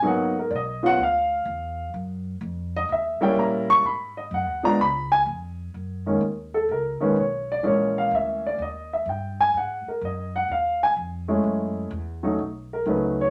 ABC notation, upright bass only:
X:1
M:4/4
L:1/8
Q:"Swing" 1/4=126
K:F#
V:1 name="Upright bass" clef=bass
G,,,2 B,,,2 =D,,2 =E,,2 | F,,2 E,,2 D,, z A,,2 | G,,2 (3F,, D,, B,,, C,,2 E,,2 | F,,2 D,,2 C,, z B,,,2 |
A,,,2 =D,,2 ^D,,2 =G,,2 | G,, z F,,2 D,,2 E,,2 | F,,2 =E,,2 B,,,2 C,,2 |]